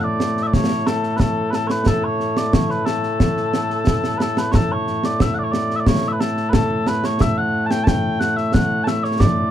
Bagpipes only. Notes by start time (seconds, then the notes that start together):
Already playing: A2 A3
0.04 D5
0.43 D5 E5
0.53 C#5
0.87 A4
1.17 A4 B4
1.51 A4 B4
1.67 B4 C#5
1.88 A4
2.04 C#5
2.37 D5
2.54 C#5
2.70 B4
2.86 A4
4.18 B4
4.22 A4
4.38 B4
4.51 A4 C#5
4.72 C#5
5.05 D5
5.22 E5
5.34 F#5
5.39 D5
5.44 C#5
5.51 D5
5.76 D5 E5
5.87 C#5
6.08 B4 E5
6.20 A4
6.50 B4
6.54 A4
6.88 B4
7.05 C#5
7.21 E5
7.38 F#5
7.66 A5
7.71 G5
7.84 G5 A5
8.20 F#5
8.36 E5
8.53 F#5
8.84 E5 A5
9.04 C#5
9.20 D5